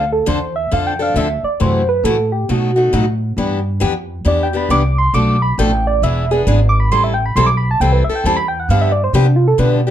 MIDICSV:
0, 0, Header, 1, 5, 480
1, 0, Start_track
1, 0, Tempo, 443787
1, 1728, Time_signature, 4, 2, 24, 8
1, 10713, End_track
2, 0, Start_track
2, 0, Title_t, "Soft synth lead"
2, 0, Program_c, 0, 80
2, 0, Note_on_c, 0, 77, 108
2, 111, Note_off_c, 0, 77, 0
2, 135, Note_on_c, 0, 69, 74
2, 295, Note_off_c, 0, 69, 0
2, 307, Note_on_c, 0, 72, 84
2, 592, Note_off_c, 0, 72, 0
2, 603, Note_on_c, 0, 76, 94
2, 769, Note_off_c, 0, 76, 0
2, 793, Note_on_c, 0, 77, 82
2, 932, Note_off_c, 0, 77, 0
2, 938, Note_on_c, 0, 79, 99
2, 1089, Note_off_c, 0, 79, 0
2, 1107, Note_on_c, 0, 77, 89
2, 1253, Note_off_c, 0, 77, 0
2, 1269, Note_on_c, 0, 76, 81
2, 1553, Note_off_c, 0, 76, 0
2, 1562, Note_on_c, 0, 74, 90
2, 1728, Note_off_c, 0, 74, 0
2, 1745, Note_on_c, 0, 72, 86
2, 2031, Note_off_c, 0, 72, 0
2, 2042, Note_on_c, 0, 71, 92
2, 2204, Note_off_c, 0, 71, 0
2, 2210, Note_on_c, 0, 69, 77
2, 2503, Note_off_c, 0, 69, 0
2, 2511, Note_on_c, 0, 67, 87
2, 2682, Note_off_c, 0, 67, 0
2, 2715, Note_on_c, 0, 66, 78
2, 3617, Note_off_c, 0, 66, 0
2, 4625, Note_on_c, 0, 74, 82
2, 4771, Note_off_c, 0, 74, 0
2, 4793, Note_on_c, 0, 79, 93
2, 4935, Note_off_c, 0, 79, 0
2, 4941, Note_on_c, 0, 83, 86
2, 5089, Note_off_c, 0, 83, 0
2, 5095, Note_on_c, 0, 86, 108
2, 5384, Note_off_c, 0, 86, 0
2, 5391, Note_on_c, 0, 84, 95
2, 5557, Note_off_c, 0, 84, 0
2, 5564, Note_on_c, 0, 86, 115
2, 5859, Note_off_c, 0, 86, 0
2, 5864, Note_on_c, 0, 83, 100
2, 6036, Note_off_c, 0, 83, 0
2, 6042, Note_on_c, 0, 79, 88
2, 6338, Note_off_c, 0, 79, 0
2, 6350, Note_on_c, 0, 74, 101
2, 6521, Note_off_c, 0, 74, 0
2, 6526, Note_on_c, 0, 76, 113
2, 6820, Note_off_c, 0, 76, 0
2, 6831, Note_on_c, 0, 68, 98
2, 6936, Note_off_c, 0, 68, 0
2, 7237, Note_on_c, 0, 86, 111
2, 7348, Note_off_c, 0, 86, 0
2, 7354, Note_on_c, 0, 83, 92
2, 7460, Note_off_c, 0, 83, 0
2, 7484, Note_on_c, 0, 84, 113
2, 7606, Note_off_c, 0, 84, 0
2, 7613, Note_on_c, 0, 76, 68
2, 7715, Note_off_c, 0, 76, 0
2, 7722, Note_on_c, 0, 79, 104
2, 7839, Note_off_c, 0, 79, 0
2, 7849, Note_on_c, 0, 83, 88
2, 7948, Note_off_c, 0, 83, 0
2, 7960, Note_on_c, 0, 84, 102
2, 8067, Note_off_c, 0, 84, 0
2, 8074, Note_on_c, 0, 86, 117
2, 8185, Note_off_c, 0, 86, 0
2, 8191, Note_on_c, 0, 83, 108
2, 8314, Note_off_c, 0, 83, 0
2, 8337, Note_on_c, 0, 81, 96
2, 8432, Note_off_c, 0, 81, 0
2, 8447, Note_on_c, 0, 79, 96
2, 8566, Note_off_c, 0, 79, 0
2, 8573, Note_on_c, 0, 71, 69
2, 8694, Note_off_c, 0, 71, 0
2, 8700, Note_on_c, 0, 76, 99
2, 8809, Note_off_c, 0, 76, 0
2, 8820, Note_on_c, 0, 79, 83
2, 8914, Note_off_c, 0, 79, 0
2, 8941, Note_on_c, 0, 81, 82
2, 9041, Note_off_c, 0, 81, 0
2, 9048, Note_on_c, 0, 83, 114
2, 9169, Note_off_c, 0, 83, 0
2, 9175, Note_on_c, 0, 79, 102
2, 9286, Note_off_c, 0, 79, 0
2, 9298, Note_on_c, 0, 78, 84
2, 9392, Note_off_c, 0, 78, 0
2, 9418, Note_on_c, 0, 77, 91
2, 9526, Note_off_c, 0, 77, 0
2, 9532, Note_on_c, 0, 76, 94
2, 9643, Note_off_c, 0, 76, 0
2, 9649, Note_on_c, 0, 74, 93
2, 9763, Note_off_c, 0, 74, 0
2, 9776, Note_on_c, 0, 72, 97
2, 9872, Note_off_c, 0, 72, 0
2, 9901, Note_on_c, 0, 71, 87
2, 10011, Note_off_c, 0, 71, 0
2, 10017, Note_on_c, 0, 62, 59
2, 10118, Note_off_c, 0, 62, 0
2, 10124, Note_on_c, 0, 65, 86
2, 10241, Note_off_c, 0, 65, 0
2, 10250, Note_on_c, 0, 69, 88
2, 10349, Note_off_c, 0, 69, 0
2, 10374, Note_on_c, 0, 71, 100
2, 10553, Note_off_c, 0, 71, 0
2, 10713, End_track
3, 0, Start_track
3, 0, Title_t, "Steel-string acoustic guitar"
3, 0, Program_c, 1, 25
3, 284, Note_on_c, 1, 50, 83
3, 286, Note_on_c, 1, 53, 96
3, 286, Note_on_c, 1, 60, 85
3, 292, Note_on_c, 1, 62, 86
3, 293, Note_on_c, 1, 69, 94
3, 408, Note_off_c, 1, 50, 0
3, 409, Note_off_c, 1, 53, 0
3, 409, Note_off_c, 1, 60, 0
3, 412, Note_off_c, 1, 62, 0
3, 412, Note_off_c, 1, 69, 0
3, 773, Note_on_c, 1, 50, 68
3, 773, Note_on_c, 1, 53, 65
3, 777, Note_on_c, 1, 60, 61
3, 777, Note_on_c, 1, 62, 75
3, 781, Note_on_c, 1, 69, 75
3, 1000, Note_off_c, 1, 53, 0
3, 1001, Note_off_c, 1, 50, 0
3, 1003, Note_off_c, 1, 60, 0
3, 1003, Note_off_c, 1, 62, 0
3, 1005, Note_off_c, 1, 69, 0
3, 1073, Note_on_c, 1, 69, 52
3, 1081, Note_on_c, 1, 62, 53
3, 1089, Note_on_c, 1, 60, 41
3, 1242, Note_off_c, 1, 69, 0
3, 1243, Note_off_c, 1, 60, 0
3, 1246, Note_off_c, 1, 62, 0
3, 1251, Note_on_c, 1, 50, 80
3, 1256, Note_on_c, 1, 60, 80
3, 1257, Note_on_c, 1, 53, 76
3, 1257, Note_on_c, 1, 62, 78
3, 1265, Note_on_c, 1, 69, 91
3, 1371, Note_off_c, 1, 50, 0
3, 1374, Note_off_c, 1, 53, 0
3, 1374, Note_off_c, 1, 60, 0
3, 1374, Note_off_c, 1, 62, 0
3, 1378, Note_off_c, 1, 69, 0
3, 1729, Note_on_c, 1, 48, 62
3, 1731, Note_on_c, 1, 52, 69
3, 1733, Note_on_c, 1, 57, 65
3, 1740, Note_on_c, 1, 64, 62
3, 1741, Note_on_c, 1, 66, 68
3, 1958, Note_off_c, 1, 48, 0
3, 1960, Note_off_c, 1, 52, 0
3, 1961, Note_off_c, 1, 57, 0
3, 1964, Note_off_c, 1, 64, 0
3, 1964, Note_off_c, 1, 66, 0
3, 2216, Note_on_c, 1, 48, 89
3, 2217, Note_on_c, 1, 57, 98
3, 2219, Note_on_c, 1, 52, 94
3, 2221, Note_on_c, 1, 64, 88
3, 2221, Note_on_c, 1, 66, 93
3, 2334, Note_off_c, 1, 48, 0
3, 2334, Note_off_c, 1, 57, 0
3, 2335, Note_off_c, 1, 52, 0
3, 2336, Note_off_c, 1, 64, 0
3, 2336, Note_off_c, 1, 66, 0
3, 2694, Note_on_c, 1, 47, 61
3, 2695, Note_on_c, 1, 57, 76
3, 2699, Note_on_c, 1, 54, 59
3, 2702, Note_on_c, 1, 63, 66
3, 2702, Note_on_c, 1, 66, 68
3, 2921, Note_off_c, 1, 47, 0
3, 2922, Note_off_c, 1, 57, 0
3, 2924, Note_off_c, 1, 54, 0
3, 2925, Note_off_c, 1, 63, 0
3, 2925, Note_off_c, 1, 66, 0
3, 2984, Note_on_c, 1, 66, 56
3, 2996, Note_on_c, 1, 63, 46
3, 3000, Note_on_c, 1, 57, 48
3, 3152, Note_off_c, 1, 57, 0
3, 3157, Note_off_c, 1, 66, 0
3, 3163, Note_off_c, 1, 63, 0
3, 3165, Note_on_c, 1, 54, 79
3, 3165, Note_on_c, 1, 57, 83
3, 3166, Note_on_c, 1, 47, 75
3, 3175, Note_on_c, 1, 63, 86
3, 3176, Note_on_c, 1, 66, 86
3, 3288, Note_off_c, 1, 54, 0
3, 3288, Note_off_c, 1, 57, 0
3, 3289, Note_off_c, 1, 47, 0
3, 3293, Note_off_c, 1, 63, 0
3, 3293, Note_off_c, 1, 66, 0
3, 3652, Note_on_c, 1, 52, 62
3, 3655, Note_on_c, 1, 59, 69
3, 3655, Note_on_c, 1, 62, 71
3, 3660, Note_on_c, 1, 67, 64
3, 3879, Note_off_c, 1, 52, 0
3, 3881, Note_off_c, 1, 59, 0
3, 3881, Note_off_c, 1, 62, 0
3, 3883, Note_off_c, 1, 67, 0
3, 4111, Note_on_c, 1, 52, 84
3, 4122, Note_on_c, 1, 59, 93
3, 4122, Note_on_c, 1, 62, 89
3, 4124, Note_on_c, 1, 67, 96
3, 4241, Note_off_c, 1, 52, 0
3, 4246, Note_off_c, 1, 59, 0
3, 4246, Note_off_c, 1, 62, 0
3, 4247, Note_off_c, 1, 67, 0
3, 4592, Note_on_c, 1, 52, 67
3, 4598, Note_on_c, 1, 59, 71
3, 4604, Note_on_c, 1, 62, 76
3, 4604, Note_on_c, 1, 67, 76
3, 4829, Note_off_c, 1, 52, 0
3, 4832, Note_off_c, 1, 59, 0
3, 4835, Note_off_c, 1, 62, 0
3, 4835, Note_off_c, 1, 67, 0
3, 4901, Note_on_c, 1, 67, 60
3, 4912, Note_on_c, 1, 62, 51
3, 4919, Note_on_c, 1, 59, 48
3, 5072, Note_off_c, 1, 59, 0
3, 5075, Note_off_c, 1, 67, 0
3, 5080, Note_off_c, 1, 62, 0
3, 5085, Note_on_c, 1, 59, 82
3, 5086, Note_on_c, 1, 52, 74
3, 5089, Note_on_c, 1, 67, 82
3, 5093, Note_on_c, 1, 62, 85
3, 5207, Note_off_c, 1, 59, 0
3, 5208, Note_off_c, 1, 52, 0
3, 5210, Note_off_c, 1, 67, 0
3, 5212, Note_off_c, 1, 62, 0
3, 5557, Note_on_c, 1, 47, 69
3, 5561, Note_on_c, 1, 53, 61
3, 5564, Note_on_c, 1, 57, 74
3, 5567, Note_on_c, 1, 69, 69
3, 5568, Note_on_c, 1, 62, 69
3, 5791, Note_off_c, 1, 47, 0
3, 5793, Note_off_c, 1, 53, 0
3, 5795, Note_off_c, 1, 57, 0
3, 5797, Note_off_c, 1, 62, 0
3, 5797, Note_off_c, 1, 69, 0
3, 6044, Note_on_c, 1, 47, 88
3, 6044, Note_on_c, 1, 57, 93
3, 6046, Note_on_c, 1, 53, 85
3, 6048, Note_on_c, 1, 62, 94
3, 6053, Note_on_c, 1, 69, 93
3, 6167, Note_off_c, 1, 47, 0
3, 6167, Note_off_c, 1, 53, 0
3, 6167, Note_off_c, 1, 57, 0
3, 6168, Note_off_c, 1, 62, 0
3, 6171, Note_off_c, 1, 69, 0
3, 6524, Note_on_c, 1, 52, 73
3, 6528, Note_on_c, 1, 62, 71
3, 6529, Note_on_c, 1, 59, 73
3, 6534, Note_on_c, 1, 68, 75
3, 6754, Note_off_c, 1, 52, 0
3, 6757, Note_off_c, 1, 59, 0
3, 6757, Note_off_c, 1, 62, 0
3, 6759, Note_off_c, 1, 68, 0
3, 6826, Note_on_c, 1, 68, 61
3, 6835, Note_on_c, 1, 62, 51
3, 6844, Note_on_c, 1, 59, 44
3, 6990, Note_off_c, 1, 62, 0
3, 6993, Note_off_c, 1, 59, 0
3, 6994, Note_off_c, 1, 68, 0
3, 6996, Note_on_c, 1, 52, 80
3, 7003, Note_on_c, 1, 62, 92
3, 7006, Note_on_c, 1, 59, 83
3, 7007, Note_on_c, 1, 68, 88
3, 7122, Note_off_c, 1, 52, 0
3, 7126, Note_off_c, 1, 62, 0
3, 7127, Note_off_c, 1, 59, 0
3, 7128, Note_off_c, 1, 68, 0
3, 7480, Note_on_c, 1, 52, 67
3, 7482, Note_on_c, 1, 55, 70
3, 7484, Note_on_c, 1, 60, 70
3, 7486, Note_on_c, 1, 64, 66
3, 7491, Note_on_c, 1, 69, 73
3, 7712, Note_off_c, 1, 52, 0
3, 7713, Note_off_c, 1, 55, 0
3, 7714, Note_off_c, 1, 60, 0
3, 7715, Note_off_c, 1, 64, 0
3, 7718, Note_off_c, 1, 69, 0
3, 7966, Note_on_c, 1, 52, 84
3, 7968, Note_on_c, 1, 55, 91
3, 7971, Note_on_c, 1, 60, 89
3, 7972, Note_on_c, 1, 64, 97
3, 7977, Note_on_c, 1, 69, 92
3, 8087, Note_off_c, 1, 52, 0
3, 8088, Note_off_c, 1, 55, 0
3, 8090, Note_off_c, 1, 60, 0
3, 8090, Note_off_c, 1, 64, 0
3, 8092, Note_off_c, 1, 69, 0
3, 8448, Note_on_c, 1, 52, 66
3, 8449, Note_on_c, 1, 55, 72
3, 8453, Note_on_c, 1, 60, 74
3, 8455, Note_on_c, 1, 64, 78
3, 8458, Note_on_c, 1, 69, 71
3, 8676, Note_off_c, 1, 52, 0
3, 8677, Note_off_c, 1, 55, 0
3, 8679, Note_off_c, 1, 60, 0
3, 8680, Note_off_c, 1, 64, 0
3, 8681, Note_off_c, 1, 69, 0
3, 8756, Note_on_c, 1, 69, 61
3, 8764, Note_on_c, 1, 64, 53
3, 8776, Note_on_c, 1, 60, 52
3, 8920, Note_off_c, 1, 60, 0
3, 8921, Note_off_c, 1, 69, 0
3, 8923, Note_off_c, 1, 64, 0
3, 8928, Note_on_c, 1, 52, 79
3, 8933, Note_on_c, 1, 60, 84
3, 8936, Note_on_c, 1, 55, 84
3, 8936, Note_on_c, 1, 64, 81
3, 8943, Note_on_c, 1, 69, 82
3, 9048, Note_off_c, 1, 52, 0
3, 9051, Note_off_c, 1, 60, 0
3, 9052, Note_off_c, 1, 55, 0
3, 9052, Note_off_c, 1, 64, 0
3, 9055, Note_off_c, 1, 69, 0
3, 9411, Note_on_c, 1, 50, 65
3, 9412, Note_on_c, 1, 53, 68
3, 9416, Note_on_c, 1, 59, 67
3, 9418, Note_on_c, 1, 62, 74
3, 9422, Note_on_c, 1, 67, 77
3, 9638, Note_off_c, 1, 50, 0
3, 9638, Note_off_c, 1, 53, 0
3, 9640, Note_off_c, 1, 59, 0
3, 9641, Note_off_c, 1, 62, 0
3, 9643, Note_off_c, 1, 67, 0
3, 9885, Note_on_c, 1, 50, 83
3, 9891, Note_on_c, 1, 59, 93
3, 9893, Note_on_c, 1, 53, 84
3, 9895, Note_on_c, 1, 62, 90
3, 9895, Note_on_c, 1, 67, 106
3, 10007, Note_off_c, 1, 50, 0
3, 10010, Note_off_c, 1, 59, 0
3, 10011, Note_off_c, 1, 53, 0
3, 10012, Note_off_c, 1, 62, 0
3, 10012, Note_off_c, 1, 67, 0
3, 10362, Note_on_c, 1, 50, 73
3, 10367, Note_on_c, 1, 59, 66
3, 10368, Note_on_c, 1, 53, 64
3, 10373, Note_on_c, 1, 62, 81
3, 10374, Note_on_c, 1, 67, 72
3, 10594, Note_off_c, 1, 50, 0
3, 10597, Note_off_c, 1, 53, 0
3, 10597, Note_off_c, 1, 59, 0
3, 10600, Note_off_c, 1, 62, 0
3, 10600, Note_off_c, 1, 67, 0
3, 10673, Note_on_c, 1, 67, 54
3, 10678, Note_on_c, 1, 62, 51
3, 10713, Note_off_c, 1, 62, 0
3, 10713, Note_off_c, 1, 67, 0
3, 10713, End_track
4, 0, Start_track
4, 0, Title_t, "Upright bass"
4, 0, Program_c, 2, 32
4, 0, Note_on_c, 2, 38, 89
4, 278, Note_off_c, 2, 38, 0
4, 296, Note_on_c, 2, 40, 88
4, 758, Note_off_c, 2, 40, 0
4, 779, Note_on_c, 2, 41, 80
4, 1230, Note_off_c, 2, 41, 0
4, 1236, Note_on_c, 2, 38, 87
4, 1524, Note_off_c, 2, 38, 0
4, 1738, Note_on_c, 2, 42, 84
4, 2194, Note_off_c, 2, 42, 0
4, 2201, Note_on_c, 2, 45, 88
4, 2670, Note_off_c, 2, 45, 0
4, 2691, Note_on_c, 2, 47, 78
4, 3154, Note_off_c, 2, 47, 0
4, 3167, Note_on_c, 2, 45, 92
4, 3633, Note_off_c, 2, 45, 0
4, 3640, Note_on_c, 2, 43, 82
4, 4109, Note_off_c, 2, 43, 0
4, 4129, Note_on_c, 2, 41, 89
4, 4591, Note_off_c, 2, 41, 0
4, 4597, Note_on_c, 2, 40, 88
4, 5065, Note_off_c, 2, 40, 0
4, 5071, Note_on_c, 2, 36, 85
4, 5544, Note_off_c, 2, 36, 0
4, 5553, Note_on_c, 2, 35, 91
4, 6024, Note_off_c, 2, 35, 0
4, 6033, Note_on_c, 2, 33, 88
4, 6504, Note_off_c, 2, 33, 0
4, 6512, Note_on_c, 2, 28, 86
4, 6984, Note_off_c, 2, 28, 0
4, 6996, Note_on_c, 2, 32, 100
4, 7466, Note_off_c, 2, 32, 0
4, 7480, Note_on_c, 2, 33, 85
4, 7948, Note_off_c, 2, 33, 0
4, 7956, Note_on_c, 2, 35, 94
4, 8426, Note_off_c, 2, 35, 0
4, 8438, Note_on_c, 2, 36, 87
4, 8723, Note_off_c, 2, 36, 0
4, 8912, Note_on_c, 2, 40, 95
4, 9384, Note_off_c, 2, 40, 0
4, 9396, Note_on_c, 2, 43, 96
4, 9866, Note_off_c, 2, 43, 0
4, 9876, Note_on_c, 2, 48, 91
4, 10346, Note_off_c, 2, 48, 0
4, 10364, Note_on_c, 2, 47, 84
4, 10713, Note_off_c, 2, 47, 0
4, 10713, End_track
5, 0, Start_track
5, 0, Title_t, "Muted upright bass strokes"
5, 1547, Note_on_c, 9, 29, 36
5, 1655, Note_off_c, 9, 29, 0
5, 8741, Note_on_c, 9, 29, 42
5, 8849, Note_off_c, 9, 29, 0
5, 10713, End_track
0, 0, End_of_file